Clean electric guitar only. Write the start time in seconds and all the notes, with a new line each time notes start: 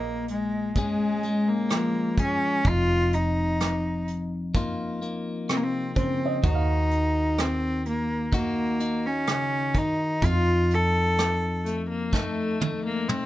Already playing: A#2 G#4
0.77 G#3 C#4 G#4
1.24 G#3
1.71 F3
2.20 G#4
2.65 F2 D#4
4.55 A#3 D#4 F4
5.02 A#3
5.49 C3
5.96 C#3
6.44 D#3 F#4
8.33 D#4 F#4
8.80 D#4
9.28 C#3
9.74 D#3
10.23 F2 D#4
12.13 A3 D#4 A4
12.61 A3